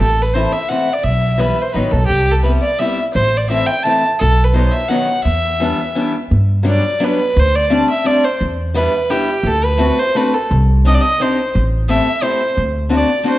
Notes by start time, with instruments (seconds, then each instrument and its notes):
0.00 upright bass A1, violin A4
0.22 violin B4
0.34 steel-string acoustic guitar E3 A3 C4 E4, violin C5
0.53 violin E5
0.69 steel-string acoustic guitar E3 A3 C4 E4, violin F#5
0.93 violin D5
1.04 upright bass B1, violin E5
1.38 steel-string acoustic guitar E3 G3 B3 E4, violin B4
1.62 violin C5
1.73 upright bass A1, steel-string acoustic guitar D#3 F#3 B3 D#4, violin B4
1.91 upright bass B1, violin A4
2.06 upright bass C2, violin G4
2.31 violin A4
2.43 steel-string acoustic guitar G3 B3 C4 E4, violin B4
2.61 violin D5
2.79 steel-string acoustic guitar G3 B3 C4 E4, violin E5
3.14 upright bass A1, violin C5
3.37 violin D5
3.50 steel-string acoustic guitar E3 A3 C4 E4, violin E5
3.67 violin G5
3.83 steel-string acoustic guitar E3 A3 C4 E4, violin A5
4.19 upright bass B1, violin A4
4.44 violin B4
4.53 steel-string acoustic guitar D#3 F#3 B3 D#4, violin C5
4.72 violin E5
4.89 steel-string acoustic guitar D#3 F#3 B3 D#4, violin F#5
5.24 upright bass E2, violin E5
5.60 steel-string acoustic guitar E3 G3 B3 D4
5.95 steel-string acoustic guitar E3 G3 B3 D4
6.31 upright bass G2
6.63 steel-string acoustic guitar F#3 G3 B3 D4
6.70 violin D5
7.00 steel-string acoustic guitar F#3 G3 B3 D4
7.04 violin B4
7.36 upright bass D2, violin C5
7.56 violin D5
7.70 steel-string acoustic guitar G3 A3 C4 D4
7.90 violin E5
8.04 steel-string acoustic guitar G3 A3 C4 D4, violin D5
8.25 violin C5
8.41 upright bass E2
8.74 steel-string acoustic guitar G3 B3 D4 E4, violin B4
9.10 steel-string acoustic guitar G3 B3 D4 E4, violin G4
9.43 upright bass D2, violin A4
9.64 violin B4
9.78 steel-string acoustic guitar A3 C4 D4 F#4
9.99 violin C5
10.15 steel-string acoustic guitar A3 C4 D4 F#4, violin B4
10.34 violin A4
10.51 upright bass C2
10.85 steel-string acoustic guitar C4 D4 D#4 G4, violin D#5
10.95 violin D5
11.01 violin D#5
11.20 steel-string acoustic guitar C4 D4 D#4 G4, violin C5
11.55 upright bass A1
11.89 steel-string acoustic guitar A3 C4 E4 G4, violin E5
12.22 steel-string acoustic guitar A3 C4 E4 G4, violin C5
12.57 upright bass D2
12.89 steel-string acoustic guitar A3 C4 D4 F#4
12.95 violin D5
13.23 steel-string acoustic guitar A3 C4 D4 F#4
13.29 violin C5